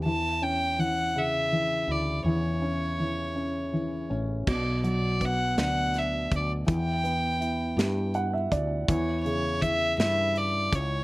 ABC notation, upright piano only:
X:1
M:6/8
L:1/16
Q:3/8=54
K:Bm
V:1 name="Upright piano"
z12 | z12 | z12 | z8 f e d2 |
z12 |]
V:2 name="Upright piano" clef=bass
E,2 C2 E,2 C,2 E,2 E2 | E,2 C2 E,2 C2 E,2 C2 | B,,2 F,2 B,2 D6 | E,2 B,2 E2 G6 |
E,2 C,2 E,2 E6 |]